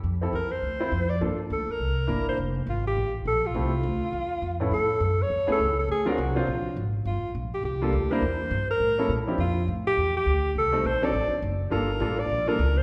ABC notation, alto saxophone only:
X:1
M:4/4
L:1/8
Q:"Swing" 1/4=206
K:F
V:1 name="Alto saxophone"
z2 B c4 d | z2 A B4 c | z2 F G2 z A F- | F6- F z |
A3 ^c2 A2 A | _A ^F2 ^E3 z2 | F2 z G G3 c- | c3 B4 z |
F2 z G2 G3 | A2 c d3 z2 | B3 d2 B2 c |]